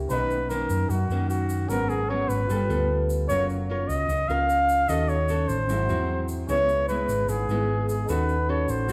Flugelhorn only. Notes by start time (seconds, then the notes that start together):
0.10 B4
0.49 A#4
0.90 F#4
1.29 F#4
1.69 A#4
1.89 G#4
2.09 C#5
2.29 B4
3.28 C#5
3.68 C#5
3.88 D#5
4.28 F5
4.89 D#5
5.09 C#5
5.48 C5
6.49 C#5
6.88 B4
7.29 G#4
7.89 G#4
8.09 B4
8.50 C#5
8.70 C5